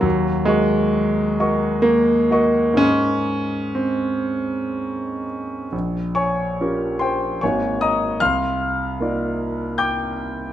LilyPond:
\new Staff \with { instrumentName = "Grand piano" } { \time 3/4 \key aes \major \tempo 4 = 68 << { ges8 aes4. bes4 | des'4 c'4. r8 | r8 <des'' aes'' des'''>4 <c'' g'' c'''>8 <des'' aes'' des'''>8 <ees'' bes'' ees'''>8 | <f'' c''' f'''>2 <g'' d''' g'''>4 | } \\ { ees,8 <ges' bes' ees'' des'''>4 <ges' bes' ees'' des'''>4 <ges' bes' ees'' des'''>8 | <aes, aes' bes' ees'' c'''>2. | bes,,4 <des' f' g' bes'>4 <aes,, bes ees' ges' bes'>4 | c,4 <bes ees' f' d''>2 | } >> }